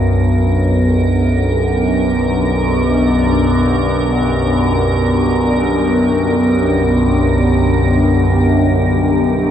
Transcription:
Already playing: synth drone B1 F#2, analog synth pad B3 D4, ambient pad A#4
0.46 analog synth pad G4
1.65 analog synth pad D5
9.08 analog synth pad E5

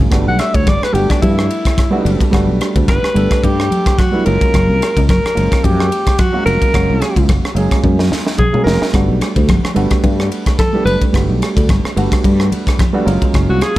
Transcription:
0.10 fretless electric bass G1, grand piano G3 A3 B3 D4 F#4, kick, cross-stick, ride
0.27 fretless electric bass B1, alto saxophone F#5
0.39 alto saxophone E5, cross-stick, ride, muted conga
0.54 fretless electric bass D2, alto saxophone C#5, kick, ride
0.67 fretless electric bass G1, alto saxophone D5, kick, cross-stick, ride, high conga
0.82 alto saxophone B4, muted fretless electric bass stroke, cross-stick
0.92 fretless electric bass G1, grand piano G3 A3 B3 D4 F#4, alto saxophone G4, ride
1.10 alto saxophone D4, muted fretless electric bass stroke, kick, cross-stick, ride
1.22 fretless electric bass G2, alto saxophone E4, kick, ride, muted conga, high conga
1.39 cross-stick
1.51 ride
1.65 kick, cross-stick, ride
1.77 kick, cross-stick, ride, high conga
1.91 grand piano G3 A3 B3 D4 F#4
2.05 fretless electric bass F#1, ride
2.21 kick, ride
2.31 fretless electric bass G1, grand piano G3 A3 B3 D4 F#4, kick, cross-stick, ride
2.47 fretless electric bass B1
2.61 cross-stick, ride, muted conga
2.76 fretless electric bass D2, kick, ride
2.88 fretless electric bass G1, alto saxophone B4, kick, cross-stick, ride, high conga
3.03 muted fretless electric bass stroke, cross-stick
3.14 fretless electric bass G1, grand piano G3 A3 B3 D4 A4, ride
3.31 kick, cross-stick, ride
3.44 fretless electric bass G2, alto saxophone G4, kick, ride
3.60 cross-stick
3.71 ride, high conga
3.86 kick, cross-stick, ride
3.99 alto saxophone F#4, kick, cross-stick, ride, high conga
4.11 grand piano G3 A3 B3 D4 E4
4.25 fretless electric bass F#1, grand piano F#3 G#3 A#3 C#4 F4, alto saxophone A#4, ride, muted conga
4.41 kick, ride
4.54 fretless electric bass F#1, kick, cross-stick, ride, muted conga
4.68 fretless electric bass C2
4.81 cross-stick, ride, muted conga
4.97 fretless electric bass C#2, kick, ride
5.09 fretless electric bass F#1, alto saxophone A#4, kick, cross-stick, ride, high conga
5.24 muted fretless electric bass stroke, cross-stick
5.35 fretless electric bass F#1, grand piano F3 G#3 A#3 C#4 F4, ride
5.52 kick, cross-stick, ride
5.64 fretless electric bass F#2, alto saxophone G4, kick, ride, muted conga, high conga
5.80 cross-stick
5.92 ride
6.07 kick, cross-stick, ride
6.18 alto saxophone F#4, kick, cross-stick, ride, high conga
6.32 grand piano F#3 G#3 A#3 C#4 F#4
6.46 fretless electric bass F1, alto saxophone A#4, ride
6.62 kick, ride
6.73 fretless electric bass F#1, grand piano F#3 G#3 A#3 C#4 F#4, kick, cross-stick, ride
6.90 fretless electric bass C2
7.02 cross-stick, ride, muted conga
7.16 fretless electric bass C#2, kick, ride
7.29 fretless electric bass F#1, kick, cross-stick, ride, high conga
7.43 muted fretless electric bass stroke, cross-stick
7.55 fretless electric bass F#1, grand piano F#3 G#3 A#3 C#4 G#4, ride
7.71 muted fretless electric bass stroke, kick, cross-stick, ride
7.83 fretless electric bass F#2, kick, high tom, muted conga
7.99 snare
8.11 snare, high conga
8.27 snare
8.38 alto saxophone G#4, kick, mid tom, high conga
8.53 grand piano F#3 G#3 A#3 C#4 G#4, mid tom
8.64 fretless electric bass F1, alto saxophone A#4, snare
8.82 snare
8.93 fretless electric bass G1, grand piano G3 A3 B3 D4 F#4, kick, cross-stick, ride
9.08 fretless electric bass B1
9.21 cross-stick, ride, muted conga
9.36 fretless electric bass D2, kick, ride
9.49 fretless electric bass G1, kick, cross-stick, ride, high conga
9.64 muted fretless electric bass stroke, cross-stick
9.74 fretless electric bass G1, grand piano G3 A3 B3 D4 F#4, ride
9.91 kick, cross-stick, ride
10.04 fretless electric bass G2, kick, ride, muted conga, high conga
10.20 cross-stick
10.32 ride
10.46 kick, cross-stick, ride
10.59 alto saxophone A4, kick, cross-stick, ride, high conga
10.73 grand piano G3 A3 B3 D4 G4
10.85 fretless electric bass F#1, alto saxophone B4, ride, muted conga
11.01 muted fretless electric bass stroke, kick, ride
11.13 fretless electric bass G1, grand piano G3 A3 B3 D4 F#4, kick, cross-stick, ride
11.29 fretless electric bass B1
11.42 cross-stick, ride, muted conga
11.56 fretless electric bass D2, kick, ride
11.69 fretless electric bass G1, kick, cross-stick, ride, high conga
11.85 cross-stick
11.96 fretless electric bass G1, grand piano G3 A3 B3 D4 F#4, ride
12.12 kick, cross-stick, ride
12.24 fretless electric bass G2, kick, ride
12.40 cross-stick
12.52 ride, high conga
12.67 kick, cross-stick, ride
12.79 kick, cross-stick, ride, high conga
12.93 grand piano G3 A3 B3 D4 F#4
13.05 fretless electric bass F#1, grand piano F#3 G#3 A#3 C#4 F4, ride, muted conga
13.22 muted fretless electric bass stroke, kick, ride
13.34 fretless electric bass F#1, kick, cross-stick, ride, muted conga
13.49 fretless electric bass C2, alto saxophone F#4
13.61 alto saxophone G#4, cross-stick, ride, muted conga

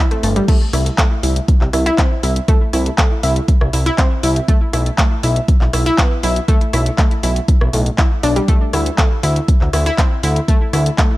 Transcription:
0.11 synth arpeggio sound A3 A4, closed hi-hat
0.23 analog synth bass G1, synth arpeggio sound A3 A4, open hi-hat
0.36 synth arpeggio sound G3 G4, closed hi-hat
0.48 synth arpeggio sound A3 A4, kick, closed hi-hat, crash
0.73 analog synth bass C2, synth arpeggio sound E4 E5, cross-stick, open hi-hat
0.86 closed hi-hat
0.98 synth arpeggio sound A3 A4, kick, clap, closed hi-hat
1.23 analog synth bass C2, synth arpeggio sound E4 E5, open hi-hat
1.36 closed hi-hat
1.48 kick, closed hi-hat
1.61 analog synth bass C2, clap
1.73 analog synth bass C2, synth arpeggio sound E4 E5, cross-stick, open hi-hat
1.86 synth arpeggio sound E4 E5, closed hi-hat
1.98 synth arpeggio sound C4 C5, kick, clap, closed hi-hat
2.23 analog synth bass C2, synth arpeggio sound E4 E5, open hi-hat
2.36 closed hi-hat
2.48 synth arpeggio sound A3 A4, kick, closed hi-hat
2.73 analog synth bass C2, synth arpeggio sound E4 E5, cross-stick, open hi-hat
2.86 closed hi-hat
2.98 synth arpeggio sound A3 A4, kick, clap, closed hi-hat
3.23 analog synth bass C2, synth arpeggio sound E4 E5, open hi-hat
3.36 closed hi-hat
3.48 kick, closed hi-hat
3.61 analog synth bass C2, cross-stick
3.73 analog synth bass C2, synth arpeggio sound E4 E5, open hi-hat
3.86 synth arpeggio sound E4 E5, closed hi-hat
3.98 synth arpeggio sound C4 C5, kick, clap, closed hi-hat
4.23 analog synth bass C2, synth arpeggio sound E4 E5, open hi-hat
4.36 closed hi-hat
4.48 synth arpeggio sound A3 A4, kick, closed hi-hat
4.73 analog synth bass B1, synth arpeggio sound E4 E5, cross-stick, open hi-hat
4.86 closed hi-hat
4.98 synth arpeggio sound A3 A4, kick, clap, closed hi-hat
5.23 analog synth bass B1, synth arpeggio sound E4 E5, open hi-hat
5.36 closed hi-hat
5.48 kick, closed hi-hat
5.61 analog synth bass B1, clap
5.73 analog synth bass B1, synth arpeggio sound E4 E5, cross-stick, open hi-hat
5.86 synth arpeggio sound E4 E5, closed hi-hat
5.98 synth arpeggio sound B3 B4, kick, clap, closed hi-hat
6.23 analog synth bass B1, synth arpeggio sound E4 E5, open hi-hat
6.36 closed hi-hat
6.48 synth arpeggio sound A3 A4, kick, closed hi-hat
6.61 closed hi-hat
6.73 analog synth bass B1, synth arpeggio sound E4 E5, cross-stick, open hi-hat
6.86 closed hi-hat
6.98 synth arpeggio sound A3 A4, kick, clap, closed hi-hat
7.11 closed hi-hat
7.23 analog synth bass B1, synth arpeggio sound E4 E5, open hi-hat
7.36 closed hi-hat
7.48 kick, closed hi-hat
7.61 analog synth bass B1, cross-stick
7.73 analog synth bass B1, synth arpeggio sound A2 A3, open hi-hat
7.86 closed hi-hat
7.98 synth arpeggio sound E4 E5, kick, clap, closed hi-hat
8.23 analog synth bass B1, synth arpeggio sound D4 D5, open hi-hat
8.36 synth arpeggio sound G3 G4, closed hi-hat
8.48 synth arpeggio sound A3 A4, kick, closed hi-hat
8.73 analog synth bass D2, synth arpeggio sound E4 E5, cross-stick, open hi-hat
8.86 closed hi-hat
8.98 synth arpeggio sound A3 A4, kick, clap, closed hi-hat
9.23 analog synth bass D2, synth arpeggio sound E4 E5, open hi-hat
9.36 closed hi-hat
9.48 kick, closed hi-hat
9.61 analog synth bass D2, clap
9.73 analog synth bass D2, synth arpeggio sound E4 E5, cross-stick, open hi-hat
9.86 synth arpeggio sound E4 E5, closed hi-hat
9.98 synth arpeggio sound C4 C5, kick, clap, closed hi-hat
10.23 analog synth bass D2, synth arpeggio sound E4 E5, open hi-hat
10.36 closed hi-hat
10.48 synth arpeggio sound A3 A4, kick, closed hi-hat
10.73 analog synth bass D2, synth arpeggio sound E4 E5, cross-stick, open hi-hat
10.86 closed hi-hat
10.98 synth arpeggio sound A3 A4, kick, clap, closed hi-hat

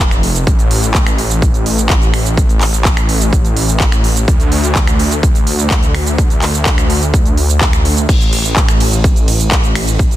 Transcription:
Already playing: detuned saw bass F1
0.00 cabasa
0.11 finger snap, closed hi-hat, cabasa
0.23 open hi-hat
0.35 closed hi-hat, cabasa
0.47 detuned saw bass A1, kick, closed hi-hat, cabasa
0.59 closed hi-hat, cabasa
0.71 open hi-hat
0.83 closed hi-hat, cabasa
0.94 kick, clap, closed hi-hat, cabasa
1.07 finger snap, closed hi-hat, cabasa
1.18 open hi-hat
1.30 closed hi-hat, cabasa
1.42 kick, closed hi-hat, cabasa
1.54 closed hi-hat, cabasa
1.66 open hi-hat
1.78 closed hi-hat, cabasa
1.90 kick, clap, closed hi-hat, cabasa
2.02 closed hi-hat, cabasa
2.14 finger snap, open hi-hat
2.26 closed hi-hat, cabasa
2.37 kick, closed hi-hat, cabasa
2.49 closed hi-hat, cabasa
2.61 clap, open hi-hat
2.73 closed hi-hat, cabasa
2.85 kick, clap, closed hi-hat, cabasa
2.97 finger snap, closed hi-hat, cabasa
3.09 open hi-hat
3.21 closed hi-hat, cabasa
3.33 kick, closed hi-hat, cabasa
3.45 closed hi-hat, cabasa
3.57 open hi-hat
3.68 closed hi-hat, cabasa
3.80 kick, clap, closed hi-hat, cabasa
3.92 finger snap, closed hi-hat, cabasa
4.04 open hi-hat
4.16 closed hi-hat, cabasa
4.28 detuned saw bass D2, kick, closed hi-hat, cabasa
4.40 closed hi-hat, cabasa
4.52 open hi-hat
4.64 closed hi-hat, cabasa
4.75 kick, clap, closed hi-hat, cabasa
4.87 finger snap, closed hi-hat, cabasa
4.99 open hi-hat
5.11 closed hi-hat, cabasa
5.23 kick, closed hi-hat, cabasa
5.35 closed hi-hat, cabasa
5.47 open hi-hat
5.59 closed hi-hat, cabasa
5.70 kick, clap, closed hi-hat, cabasa
5.83 closed hi-hat, cabasa
5.95 finger snap, open hi-hat
6.06 closed hi-hat, cabasa
6.18 kick, closed hi-hat, cabasa
6.30 closed hi-hat, cabasa
6.42 clap, open hi-hat
6.54 closed hi-hat, cabasa
6.66 kick, clap, closed hi-hat, cabasa
6.78 finger snap, closed hi-hat, cabasa
6.90 open hi-hat
7.02 closed hi-hat, cabasa
7.14 kick, closed hi-hat, cabasa
7.26 closed hi-hat, cabasa
7.37 open hi-hat
7.49 closed hi-hat, cabasa
7.61 kick, clap, closed hi-hat, cabasa
7.73 finger snap, closed hi-hat, cabasa
7.85 open hi-hat
7.97 closed hi-hat, cabasa
8.09 detuned saw bass A1, kick, closed hi-hat, crash, cabasa
8.21 closed hi-hat, cabasa
8.33 open hi-hat, ride
8.45 closed hi-hat, cabasa
8.56 kick, clap, closed hi-hat, cabasa
8.69 finger snap, closed hi-hat, cabasa
8.80 open hi-hat, ride
8.92 closed hi-hat, cabasa
9.04 kick, closed hi-hat, cabasa
9.16 closed hi-hat, cabasa
9.28 open hi-hat, ride
9.40 closed hi-hat, cabasa
9.51 kick, clap, closed hi-hat, cabasa
9.64 closed hi-hat, cabasa
9.75 finger snap, open hi-hat, ride
9.87 closed hi-hat, cabasa
9.99 kick, closed hi-hat, cabasa
10.11 closed hi-hat, cabasa

